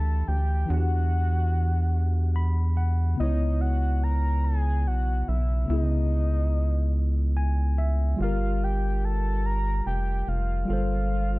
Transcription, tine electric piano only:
Already playing: E3 D4 G4 E5
0.66 E3 D4
0.71 F#4 F#5
0.77 G4
2.36 B5
2.77 F#5
3.15 C#3 B3
3.20 E4 C#5
5.65 C#3 B3
5.71 E4 G#4
7.37 G#5
7.78 E5
8.16 G3 F4
8.21 G4 A#4
10.65 G3 F4
10.71 A4 C5

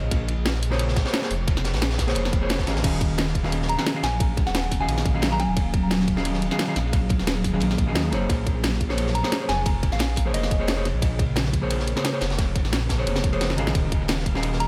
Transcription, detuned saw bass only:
0.03 A#1
0.11 A#1
0.38 A#1
1.30 F1
1.74 A#1
2.16 F1
2.33 F1
2.67 G#1
2.76 A#1
2.84 D#1
3.10 D#1
4.03 A#1
4.46 D#1
4.89 A#1
5.05 A#1
5.49 D#1
5.57 D#1
5.83 D#1
6.76 A#1
7.19 D#1
7.61 A#1
7.78 A#1
7.95 D#2
8.12 F#1
8.29 A#1
8.56 A#1
9.49 F1
9.92 A#1
10.34 F1
10.51 F1
10.94 A#1
11.02 A#1
11.28 A#1
12.22 F1
12.65 A#1
13.07 F1
13.24 F1
13.58 G#1
13.67 A#1
13.75 D#1
14.01 D#1

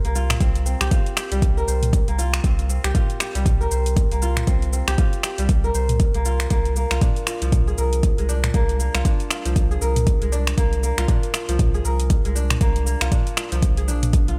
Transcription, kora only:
Already playing: G3 C4 F4 G4 A#4 C5
0.05 A#3
0.15 F4
0.41 C4
0.66 C4
0.81 G4
0.91 F4
1.17 G4
1.32 G3
1.57 A#4
1.68 C5
2.08 A#3
2.18 F4
2.44 C4
2.69 C4
2.84 G4
2.95 F4
3.20 G4
3.35 G3
3.61 A#4
3.71 C5
4.12 A#3
4.22 F4
4.47 C4
4.73 C4
4.88 G4
4.98 F4
5.24 G4
5.39 G3
5.64 A#4
5.75 C5
6.15 A#3
6.25 F4
6.51 A#3
6.76 A#3
6.91 F4
7.02 D4
7.27 F4
7.42 F3
7.67 G#4
7.78 A#4
8.18 G#3
8.29 D4
8.54 A#3
8.80 A#3
8.95 F4
9.05 D4
9.30 F4
9.46 F3
9.71 G#4
9.81 A#4
10.22 G#3
10.32 D4
10.57 A#3
10.83 A#3
10.98 F4
11.08 D4
11.34 F4
11.49 F3
11.74 G#4
11.85 A#4
12.25 G#3
12.35 D4
12.61 A#3
12.86 A#3
13.01 F4
13.12 D4
13.37 F4
13.52 F3
13.77 G#4
13.88 D4
14.28 F4

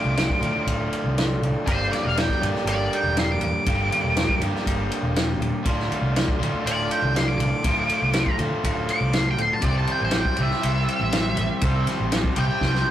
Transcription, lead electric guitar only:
Already playing: D6
1.67 C5
1.93 D5
2.06 F5
2.18 G5
2.68 D5
2.95 G5
3.19 C6
3.32 D6
3.44 D6
6.66 D5
6.92 G5
7.17 C6
7.28 D6
7.38 D6
8.90 D6
9.14 C6
9.31 G5
9.42 C6
9.53 A5
9.62 D5
9.78 A5
9.92 G5
10.05 C5
10.18 G5
10.42 E5
12.39 G5

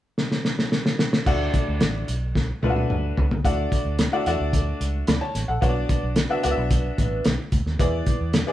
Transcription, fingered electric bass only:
1.27 D2
1.69 D2
1.82 A1
2.09 B1
2.63 C#2
2.90 D2
3.17 C#2
3.45 D2
3.85 D2
4.27 E2
4.40 D2
4.81 C#2
5.08 D2
5.35 A1
5.49 A#1
5.62 B1
6.03 B1
6.45 C#2
6.58 B1
6.99 A1
7.26 B1
7.52 D2
7.66 D#2
7.80 E2
8.21 E2

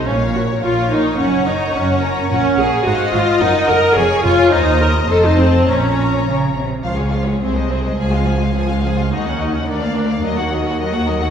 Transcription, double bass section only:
0.07 A#1
0.63 A#1
1.19 F#1
1.74 F#1
2.30 A#1
2.58 A#1
2.85 G#1
3.13 G#1
3.41 F#1
3.69 F#1
3.97 F1
4.25 F1
4.53 D#2
5.10 F1
5.68 A#1
6.84 C#2
7.42 C2
7.99 C#2
9.13 D#2
9.69 D2
10.24 D#2

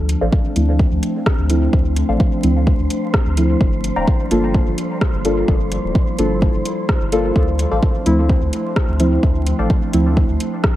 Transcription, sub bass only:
Already playing: D2
0.21 A1
0.56 D2
0.92 D2
1.38 D2
1.73 D2
2.09 A1
2.43 D2
2.79 D2
3.26 D2
3.61 G1
3.96 D1
4.31 G1
4.67 G1
5.14 G1
5.48 G1
5.84 D1
6.18 G1
6.54 G1
7.01 G1
7.36 D2
7.71 A1
8.06 D2
8.42 D2
8.88 D2
9.23 D2
9.59 A1
9.93 D2
10.29 D2

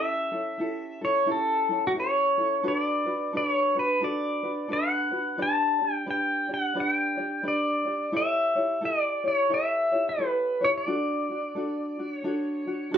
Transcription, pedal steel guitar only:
Already playing: E5
1.05 C#5
1.32 A4
1.87 F#4
2.00 C#5
2.68 D5
3.37 D5
3.48 C#5
3.79 B4
4.04 D5
4.73 F#5
5.42 A5
5.93 G5
6.11 G5
6.54 F#5
6.80 G5
7.48 D5
8.17 E5
8.85 D5
9.28 C#5
9.54 E5
10.09 B4
10.64 C#5
10.78 D5
12.13 C#5

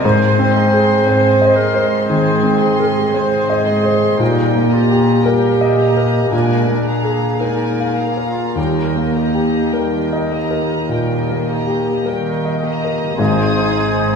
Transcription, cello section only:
0.04 G#2
1.06 G#2
2.11 G#2
3.14 G#2
4.19 A#2
5.26 A#2
6.31 A#2
7.41 A#2
8.57 D#3
9.73 D#3
10.91 D#3
12.07 D#3
13.19 G#2

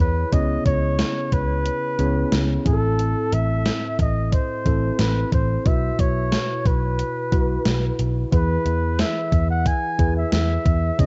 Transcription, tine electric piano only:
Already playing: E4 G#4 C#5
0.32 C#3 B3 C#4 E4 G#4 C#5
1.99 B3 C#4 E4 G#4 C#5
2.65 A2 C4 E4 G#4
2.73 A4
4.65 C4 E4 A4
5.65 B2 E4 F#4 B4
7.32 E4 F#4 B4
8.32 E3 E4 G#4 B4
9.99 E4 G#4 B4
10.98 C#3 B3 C#4 E4 G#4 C#5

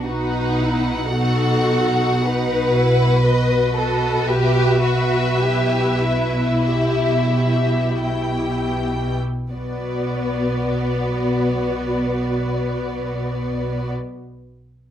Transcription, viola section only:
0.07 F#4 B4
0.58 E4
1.10 D#4 A4
2.22 D#4 F#4
2.75 E4
3.27 F#4 B4
5.41 E4
6.67 G4
7.33 G4
8.00 E4 G4
9.50 B3 F#4

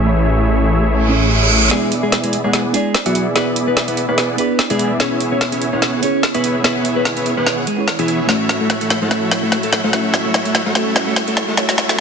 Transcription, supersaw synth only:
Already playing: A3 E4 G#4 C#5 E5
1.71 B3 E4 G#4 D5 E5
2.44 B3 E4 G#4 D5 F#5
3.06 B3 E4 G#4 D5 E5
3.36 B3 E4 G#4 D5 E5
4.08 B3 E4 G#4 D5 F#5
4.70 B3 E4 G#4 D5 E5
5.00 B3 E4 G#4 C#5 E5
5.73 B3 E4 G#4 C#5 F#5
6.34 B3 E4 G#4 C#5 E5
6.64 B3 E4 G#4 C#5 E5
7.37 B3 E4 G#4 C#5 F#5
7.99 B3 E4 G#4 C#5 E5
8.29 A3 E4 F#4 C#5 E5
9.02 A3 E4 F#4 C#5 F#5
9.11 A3 E4 F#4 C#5 E5
9.84 A3 E4 F#4 C#5 F#5
9.93 A3 E4 F#4 C#5 E5
10.66 A3 E4 F#4 C#5 F#5
10.75 A3 E4 F#4 C#5 E5
11.48 A3 E4 F#4 C#5 F#5
11.57 A3 E4 F#4 C#5 E5

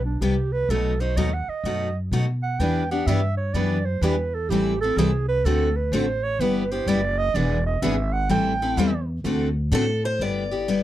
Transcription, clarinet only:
0.05 D4
0.21 G4
0.52 B4
0.70 A4
1.01 C5
1.17 D#5
1.33 F#5
1.49 D#5
2.43 F#5
2.60 G5
2.91 F#5
3.06 E5
3.37 C#5
3.54 D5
3.85 C5
4.03 B4
4.34 A4
4.49 G4
4.81 A4
4.97 G#4
5.28 B4
5.45 A4
5.76 B4
5.93 C5
6.23 C#5
6.40 B4
6.72 C5
6.88 D5
7.18 D#5
7.35 D5
7.66 D#5
7.82 E5
8.13 F#5
8.31 G5

